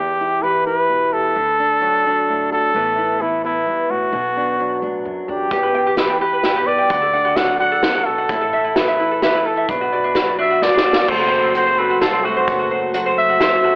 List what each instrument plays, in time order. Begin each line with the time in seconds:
Already playing: upright bass E2, steel-string acoustic guitar E2, trumpet G4
0.21 steel-string acoustic guitar E4
0.42 steel-string acoustic guitar E3 G4, trumpet B4
0.66 steel-string acoustic guitar E4, trumpet B4
0.90 steel-string acoustic guitar B2
1.13 steel-string acoustic guitar G4, trumpet A4
1.36 upright bass D2, steel-string acoustic guitar D3
1.59 steel-string acoustic guitar D4
1.81 steel-string acoustic guitar F#3 F#4
2.06 steel-string acoustic guitar D4
2.29 steel-string acoustic guitar A2
2.52 steel-string acoustic guitar F#4, trumpet A4
2.74 upright bass A1, steel-string acoustic guitar A2 E3 B3 E4
2.98 steel-string acoustic guitar E4
3.21 steel-string acoustic guitar E3 B3, trumpet E4
3.44 steel-string acoustic guitar B3, trumpet E4
3.66 steel-string acoustic guitar G2
3.90 steel-string acoustic guitar A2, trumpet F#4
4.13 upright bass B1, steel-string acoustic guitar B2
4.37 steel-string acoustic guitar D4
4.59 steel-string acoustic guitar F#3 D4
4.82 upright bass A2, steel-string acoustic guitar D4
5.05 steel-string acoustic guitar F#2, upright bass F#2
5.28 upright bass E2, steel-string acoustic guitar D4, trumpet G4
5.51 upright bass E2, steel-string acoustic guitar E2 E3 B3, ukulele G4, kick, closed hi-hat
5.63 ukulele B4
5.75 steel-string acoustic guitar B3, ukulele G5
5.87 ukulele G4
5.97 steel-string acoustic guitar E3 G4, trumpet B4, ukulele B4, snare, closed hi-hat
6.10 ukulele G5
6.21 steel-string acoustic guitar G4, ukulele G4, trumpet B4
6.33 ukulele B4
6.44 steel-string acoustic guitar B2, ukulele G5, snare, closed hi-hat
6.56 ukulele G4
6.67 steel-string acoustic guitar G4, ukulele B4, trumpet D5
6.79 ukulele G5
6.90 upright bass D2, steel-string acoustic guitar D3, ukulele F#4, kick, closed hi-hat
7.02 ukulele A4
7.14 steel-string acoustic guitar D4, ukulele F#5
7.25 ukulele F#4
7.36 steel-string acoustic guitar F#3 F#4, ukulele A4, trumpet F#5, snare, closed hi-hat
7.48 ukulele F#5
7.60 steel-string acoustic guitar D4, ukulele F#4, trumpet F#5
7.72 ukulele A4
7.83 steel-string acoustic guitar C3, ukulele F#5, snare, closed hi-hat
7.95 ukulele F#4
8.05 steel-string acoustic guitar B2, trumpet A4, ukulele A4
8.18 ukulele F#5
8.29 upright bass A1, steel-string acoustic guitar A2, ukulele E4, kick, closed hi-hat
8.41 ukulele A4
8.53 steel-string acoustic guitar E4, ukulele E5
8.64 ukulele E4
8.76 steel-string acoustic guitar E3 A4, ukulele A4, trumpet B4, snare, closed hi-hat
8.88 ukulele E5
8.99 ukulele E4, steel-string acoustic guitar E4
9.11 ukulele A4
9.22 steel-string acoustic guitar E3, trumpet B4, ukulele E5, snare, closed hi-hat
9.34 ukulele E4
9.46 steel-string acoustic guitar E4, ukulele A4, trumpet A4
9.57 ukulele E5
9.69 upright bass B1, steel-string acoustic guitar B2, ukulele D4, trumpet B4, kick, closed hi-hat
9.81 ukulele F#4
9.93 steel-string acoustic guitar F#4, ukulele D5
10.04 ukulele D4
10.15 steel-string acoustic guitar F#3 F#4, ukulele F#4, snare, closed hi-hat
10.27 ukulele D5
10.39 ukulele D4, steel-string acoustic guitar F#4, trumpet E5
10.50 ukulele F#4
10.62 steel-string acoustic guitar A2, ukulele D5, trumpet D5, snare
10.74 ukulele D4, snare
10.85 steel-string acoustic guitar G2, ukulele F#4
10.93 snare
10.97 ukulele D5
11.08 upright bass F#1, steel-string acoustic guitar F#2 F#3 A3 A4, twelve-string acoustic guitar F#3 A3 C4 F#4, ukulele C4, trumpet C5, kick, crash
11.20 ukulele F#4
11.32 steel-string acoustic guitar A4, ukulele C5
11.44 ukulele C4
11.55 twelve-string acoustic guitar F#3 A3 C4 F#4, steel-string acoustic guitar F#3, ukulele F#4, trumpet C5, closed hi-hat
11.66 ukulele C5
11.78 ukulele C4, steel-string acoustic guitar A4, trumpet B4
11.90 ukulele F#4
12.01 upright bass C2, steel-string acoustic guitar F#2, twelve-string acoustic guitar F#3 A3 C4 F#4, trumpet A4, ukulele C5, snare, closed hi-hat
12.13 ukulele C4
12.24 steel-string acoustic guitar A3, twelve-string acoustic guitar A3 C4 F#4, trumpet F#4, ukulele F#4
12.37 ukulele C5
12.48 upright bass F#1, steel-string acoustic guitar F#2 B3, twelve-string acoustic guitar F#3 A3 F#4, kick, closed hi-hat
12.59 ukulele F#4
12.71 ukulele C5
12.93 twelve-string acoustic guitar F#3 A3 F#4, steel-string acoustic guitar F#3, ukulele F#4, closed hi-hat
13.06 ukulele C5
13.18 trumpet E5
13.29 ukulele F#4
13.39 upright bass F#2, steel-string acoustic guitar F#2, twelve-string acoustic guitar F#3 A3 F#4, ukulele C5, snare, closed hi-hat
13.64 ukulele F#4, steel-string acoustic guitar A4